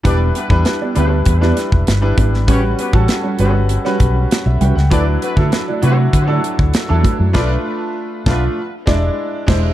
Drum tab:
CC |----------------|----------------|----------------|x-------------x-|
HH |x-x-x-x-x-x-x-x-|x-x-x-x-x-x-x-x-|x-x-x-x-x-x-x-x-|----------------|
SD |----o----oo-o--o|----o----o--o--o|----o-------o---|o-----o---o---o-|
BD |o--o----o--o--o-|o--o------o-----|o--o----o--o--o-|o-----o---o---o-|